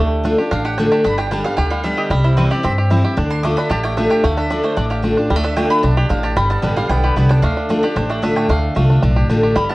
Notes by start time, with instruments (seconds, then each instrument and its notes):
Already playing: upright bass D2, five-string banjo D4 G4
0.00 steel-string acoustic guitar D3, five-string banjo A3
0.24 steel-string acoustic guitar D3 A3 D4 F4, five-string banjo D4
0.38 steel-string acoustic guitar D4 F4, five-string banjo G4
0.51 upright bass A1, steel-string acoustic guitar A2, five-string banjo D4, mandolin F5
0.65 five-string banjo G4, mandolin F#5
0.78 steel-string acoustic guitar D3 A3 D4 F4, five-string banjo D4, mandolin G5
0.91 five-string banjo G4, mandolin A5
1.04 upright bass G1, steel-string acoustic guitar G2, five-string banjo D4, mandolin B5
1.18 five-string banjo G4, mandolin G5
1.31 steel-string acoustic guitar D3 G3 B3 G4, five-string banjo G3, mandolin A5
1.44 steel-string acoustic guitar B3 G4, five-string banjo D4, mandolin F5
1.57 upright bass D2, steel-string acoustic guitar D3, five-string banjo G4, mandolin G5
1.70 five-string banjo G3, mandolin F5
1.84 steel-string acoustic guitar D3 G3 B3 G4, five-string banjo D4, mandolin E5
1.97 five-string banjo G4, mandolin D#5
2.10 upright bass C2, steel-string acoustic guitar C3, five-string banjo G3, mandolin E5
2.25 five-string banjo E4, mandolin C5
2.37 steel-string acoustic guitar E3 G3 C4 E4, five-string banjo C4, mandolin B4
2.51 steel-string acoustic guitar C4 E4, five-string banjo G4, mandolin D5
2.63 upright bass G2, steel-string acoustic guitar G2, five-string banjo C4, mandolin E5
2.78 five-string banjo G4
2.90 steel-string acoustic guitar E3 G3 C4 E4, five-string banjo E4
3.04 steel-string acoustic guitar C4 E4, five-string banjo G4
3.17 upright bass D2, steel-string acoustic guitar D3, five-string banjo D4
3.30 mandolin C6
3.43 steel-string acoustic guitar D3 A3 D4 F4, five-string banjo A3, mandolin D6
3.57 five-string banjo D4, mandolin B5
3.70 upright bass A1, steel-string acoustic guitar A2, five-string banjo G4, mandolin A5
3.84 five-string banjo A3, mandolin G5
3.97 steel-string acoustic guitar D3 A3 D4 F4, five-string banjo D4, mandolin E5
4.10 five-string banjo G4, mandolin G5
4.24 upright bass D2, steel-string acoustic guitar D3, five-string banjo A3, mandolin F5
4.38 five-string banjo D4, mandolin E5
4.50 steel-string acoustic guitar D3 A3 D4 F4, five-string banjo D4, mandolin D5
4.64 five-string banjo A3, mandolin C5
4.77 upright bass A1, steel-string acoustic guitar A2, five-string banjo D4, mandolin D5
4.90 five-string banjo G4, mandolin F5
5.02 steel-string acoustic guitar D3 A3 D4 F4, five-string banjo D4
5.17 five-string banjo D4, steel-string acoustic guitar D4 F4
5.30 upright bass D2, steel-string acoustic guitar D3, five-string banjo G3
5.36 five-string banjo A3
5.43 five-string banjo D4, mandolin E5
5.56 steel-string acoustic guitar D3 A3 D4 F4, five-string banjo A3, mandolin G5
5.70 five-string banjo D4, mandolin B5
5.83 upright bass B1, five-string banjo D4, mandolin A5
5.97 five-string banjo G4, mandolin D5
6.09 upright bass A1, steel-string acoustic guitar A2, five-string banjo D4, mandolin F5
6.23 five-string banjo G4, mandolin A5
6.36 upright bass G1, steel-string acoustic guitar G2, five-string banjo G3, mandolin B5
6.50 five-string banjo B3, mandolin A5
6.62 upright bass A1, steel-string acoustic guitar D3 G3 B3 G4, five-string banjo D4, mandolin G5
6.77 five-string banjo G3, steel-string acoustic guitar B3 G4, mandolin F5
6.89 upright bass B1, steel-string acoustic guitar D3, five-string banjo B3, mandolin G5
7.03 five-string banjo G4, mandolin B4
7.16 upright bass C2, steel-string acoustic guitar D3 G3 B3 G4, five-string banjo B3, mandolin D5
7.29 steel-string acoustic guitar B3 G4, five-string banjo D4, mandolin G5
7.42 upright bass D2, steel-string acoustic guitar D3, five-string banjo A3, mandolin F5
7.57 five-string banjo D4
7.69 steel-string acoustic guitar D3 A3 D4 F4, five-string banjo D4
7.83 steel-string acoustic guitar D4 F4, five-string banjo G4, mandolin D5
7.96 upright bass A1, steel-string acoustic guitar A2, five-string banjo D4, mandolin C5
8.09 five-string banjo A3, mandolin D5
8.22 steel-string acoustic guitar D3 A3 D4 F4, five-string banjo D4, mandolin E5
8.36 five-string banjo A3, mandolin G5
8.49 upright bass D2, steel-string acoustic guitar D3, five-string banjo A3, mandolin F5
8.75 upright bass C2, steel-string acoustic guitar D3 A3 D4 F4, five-string banjo A3
8.90 five-string banjo D4
9.02 upright bass B1, steel-string acoustic guitar A2, five-string banjo D4
9.16 five-string banjo G4
9.29 upright bass A1, steel-string acoustic guitar D3 A3 D4 F4, five-string banjo D4
9.43 five-string banjo G4
9.55 upright bass G1, steel-string acoustic guitar G2, five-string banjo G3, mandolin B5
9.69 five-string banjo B3, mandolin A5